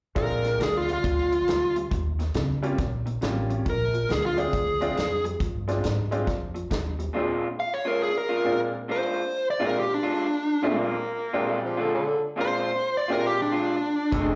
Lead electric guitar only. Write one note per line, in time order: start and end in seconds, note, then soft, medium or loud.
0.18 0.59 A#4 medium
0.63 0.77 G#4 medium
0.77 0.90 F4 medium
0.93 1.76 F4 medium
3.70 4.10 A#4 loud
4.12 4.25 G#4 medium
4.26 4.39 F4 medium
4.40 5.24 G#4 medium
7.60 7.73 F5 medium
7.74 7.87 C#5 medium
7.87 8.01 A#4 medium
8.02 8.16 G#4 medium
8.18 8.59 A#4 medium
8.92 9.47 C5 medium
9.50 9.63 D5 medium
9.66 9.78 A#4 medium
9.80 9.92 G4 medium
9.94 10.77 D4 medium
12.41 12.96 C5 medium
12.97 13.11 D5 medium
13.12 13.25 A#4 medium
13.26 13.40 G4 medium
13.42 14.25 D4 medium